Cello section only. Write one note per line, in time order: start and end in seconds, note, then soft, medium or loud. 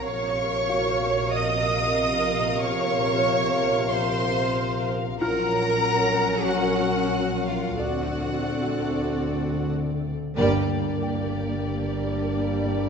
0.04 1.31 C#5 medium
1.33 2.62 D#5 medium
2.62 3.91 C#5 medium
3.91 4.88 C5 medium
5.21 6.46 A#4 medium
6.49 7.46 F#4 medium
7.46 7.78 F4 medium
7.78 9.68 F#4 medium
10.36 12.89 G2 medium